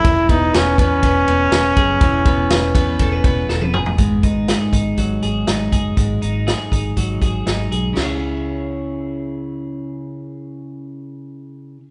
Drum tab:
CC |----------------|----------------|----------------|----------------|
RD |x-x-x-x-x-x-x-x-|x-x-x-x-x-x-----|----------------|----------------|
HH |----------------|----------------|x-x-x-x-x-x-x-x-|x-x-x-x-x-x-x-x-|
SD |----o-------o---|----o-------o---|----o-------o---|----o-------o---|
T1 |----------------|-------------o--|----------------|----------------|
T2 |----------------|--------------o-|----------------|----------------|
FT |----------------|---------------o|----------------|----------------|
BD |o-o---o-o-----o-|o-o---o-o-o-----|o-o---o-o-----o-|o-----o-o-o-----|

CC |x---------------|----------------|
RD |----------------|----------------|
HH |----------------|----------------|
SD |o---------------|----------------|
T1 |----------------|----------------|
T2 |----------------|----------------|
FT |----------------|----------------|
BD |----------------|----------------|